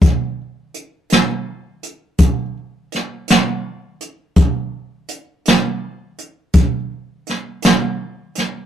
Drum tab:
HH |x-xx-xx-xx-x|x-xx-xx-xx-x|
SD |---o----oo--|---o----oo-o|
BD |o-----o-----|o-----o-----|